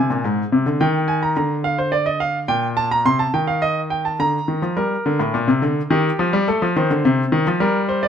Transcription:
Already playing: G#5
0.10 A#2
0.24 G#2
0.52 C3
0.66 D3
0.81 D#3 G5
1.08 G#5
1.23 A#5
1.36 D3 A#5
1.64 F5
1.78 C5
1.92 D5
2.06 D#5
2.20 F5
2.48 A#2 G5
2.77 A5
2.91 A#5
3.05 C3 C6
3.19 A5
3.34 D#3 G5
3.47 F5
3.62 D#5
3.90 G5
4.05 A5
4.19 D3 A#5
4.48 D#3
4.62 F3
4.77 G3 A#4
5.06 D3
5.19 A2
5.34 A#2
5.48 C3
5.62 D3
5.90 D#3 G4
6.19 F3
6.33 G3
6.48 A3 A4
6.62 F3
6.76 D#3 C5
6.91 D3
7.05 C3
7.32 D#3
7.47 F3
7.60 G3 A#4
7.89 C5
8.03 D5

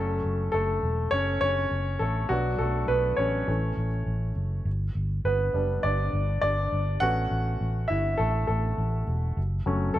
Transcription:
Already playing: F#1 F#3 A3 C#4 A4
0.24 F#1
0.52 F#1 A3 A4
0.83 E1
1.11 F#1 C#4 C#5
1.41 F#1 C#4 C#5
1.71 F#1
1.99 A1 A3 A4
2.29 B1 F#3 B3 D4 F#4
2.58 B1 A3 A4
2.88 B1 B3 B4
3.17 A1 C#4 C#5
3.47 A1 E3 A3 C#4
3.77 A1
4.06 A1
4.36 F#1
4.65 G1
4.95 G1
5.25 G1 B3 B4
5.54 F#1 G3 B3 D4
5.83 G1 D4 D5
6.13 G1
6.42 G1 D4 D5
6.72 G1
7.00 A1 A3 B3 C#4 F#4 F#5
7.31 A1
7.61 A1
7.88 G1 E4 E5
8.18 A1 A3 A4
8.47 A1 A3 A4
8.78 A1
9.07 E1
9.37 F#1
9.66 F#1 F#3 A3 C#4
9.94 F#1 A4

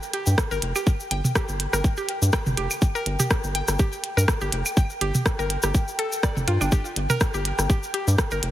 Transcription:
Already playing: G5
0.03 shaker
0.13 G4, closed hi-hat
0.26 G2, shaker
0.38 kick, cross-stick, shaker
0.51 G1 A#4, shaker
0.62 F1, closed hi-hat
0.76 G4, claves, shaker
0.87 kick, shaker
1.00 shaker
1.11 G1 G5, closed hi-hat
1.24 mid tom, shaker
1.35 G4, kick, cross-stick, shaker
1.48 G1, shaker
1.60 closed hi-hat
1.73 G1 A#4, cross-stick, shaker
1.84 kick, shaker
1.97 G4, shaker
2.09 closed hi-hat
2.22 G2, shaker
2.32 G5, kick, cross-stick, shaker
2.46 G1, mid tom, shaker
2.57 F1 G4, closed hi-hat, claves
2.71 claves, shaker
2.82 kick, shaker
2.95 A#4, shaker
3.06 G1, closed hi-hat
3.20 G4, mid tom, shaker
3.30 kick, cross-stick, shaker
3.44 G1, shaker
3.55 G5, closed hi-hat
3.68 G1, cross-stick, shaker
3.79 G4, kick, shaker
3.93 shaker
4.04 closed hi-hat
4.17 G2 A#4, shaker
4.28 kick, cross-stick, shaker
4.41 G1 G4, shaker
4.52 F1, closed hi-hat
4.66 claves, shaker
4.77 G5, kick, shaker
4.90 shaker
5.01 G1 G4, closed hi-hat
5.14 mid tom, shaker
5.26 kick, cross-stick, shaker
5.39 G1 A#4, shaker
5.50 closed hi-hat
5.62 G1 G4, cross-stick, shaker
5.74 kick, shaker
5.88 shaker
5.99 A4, closed hi-hat
6.12 shaker
6.23 D5, kick, cross-stick, shaker
6.37 F1, mid tom, shaker
6.48 G2 F4, closed hi-hat, claves
6.61 G1 D4, claves, shaker
6.72 G4, kick, shaker
6.85 shaker
6.96 G1, closed hi-hat
7.10 A#4, mid tom, shaker
7.20 kick, cross-stick, shaker
7.34 G1 G4, shaker
7.45 closed hi-hat
7.59 G1, cross-stick, shaker
7.70 G4, kick, shaker
7.83 shaker
7.94 G4, closed hi-hat
8.07 G2, shaker
8.18 kick, cross-stick, shaker
8.31 G1 A#4, shaker
8.43 F1, closed hi-hat

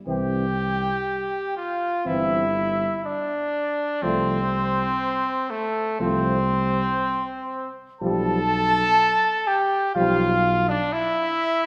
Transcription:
0.07 C2 E3 C4 G4 G5
1.57 F4 F5
2.05 G1 E3 C4 E4 E5
3.05 D4 D5
4.02 C2 F3 A3 C4 C5
5.50 A3 A4
5.99 C2 F3 A3 C4 C5
8.01 B1 F3 G3 A4 A5
9.47 G4 G5
9.95 B1 F3 G3 F4 F5
10.69 D4 D5
10.93 E4 E5

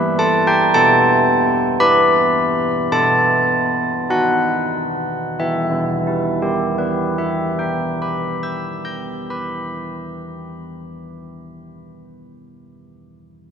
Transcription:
Already playing: G3 E4 B4 B5
0.19 A5
0.47 G5
0.74 B3 A5
1.80 E4 B4 B5
2.92 B3 A5
4.10 D#4 B4 F#5
5.39 E3 E5
5.71 B3
6.07 E4
6.42 G4
6.78 B4
7.18 E5
7.59 G5
8.02 B5
8.43 E6
8.85 G6
9.30 B5

